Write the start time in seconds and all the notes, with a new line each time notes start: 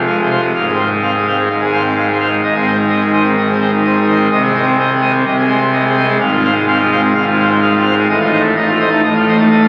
Already playing: F1 F2
0.06 G#3 F5
0.19 C3 G#4
0.31 C5 F5
0.38 G#3
0.42 C3
0.55 G#1 G#2 F5
0.67 G#4
0.72 C4
0.79 C5 F5
0.87 G#3
1.03 C4 F5
1.15 G#4
1.19 G#3
1.27 C5 F5
1.35 G#3 C4
1.50 G#1 G#2 F5
1.61 G#3 G#4
1.73 C5 F5
1.79 C4
1.84 G#3
1.96 G#3 F5
2.08 G#4
2.12 C4
2.20 C5 F5
2.28 G#3
2.43 G#1 G#2 D#5
2.55 C4 G#4
2.66 C5 D#5
2.75 D#3
2.89 C4 D#5
3.01 D#3 G#4
3.13 C5 D#5
3.21 D#3 C4
3.37 D#3 D#5
3.49 C4 G#4
3.60 C5 D#5
3.68 D#3
3.72 D#3
3.85 C4 D#5
3.96 D#3 G#4
4.07 C5 D#5
4.15 C4
4.20 D#3
4.31 C2 C3 D#5
4.43 C4 G#4
4.55 C5 D#5
4.63 G#3 C4
4.78 C4 D#5
4.90 G#4
4.95 G#3
5.02 C5 D#5
5.10 C4
5.14 C4
5.26 C2 C3 D#5
5.39 G#3 G#4
5.48 C5 D#5
5.57 C4
5.73 G#3 D#5
5.85 C4 G#4
5.96 C5 D#5
6.04 G#3 C4
6.20 G#1 G#2 F5
6.32 C4 F4
6.44 C5 F5
6.51 G#3
6.67 C4 F5
6.79 F4
6.83 G#3
6.91 C5 F5
6.99 G#3 C4
7.15 G#1 G#2 F5
7.26 F4
7.31 G#3
7.39 C5 F5
7.47 C4
7.51 G#3
7.62 G#3 F5
7.75 C4 F4
7.85 C5 F5
7.94 G#3
7.98 G#3
8.09 A1 A2 D#5
8.21 D#4 F4
8.32 C5 D#5
8.41 A3
8.56 D#4 D#5
8.68 F4
8.72 A3
8.80 C5 D#5
8.88 D#4
8.92 A3
9.04 A1 A2 D#5
9.16 F4
9.20 A3
9.27 C5 D#5
9.35 A3 D#4
9.50 A3 D#5
9.63 F4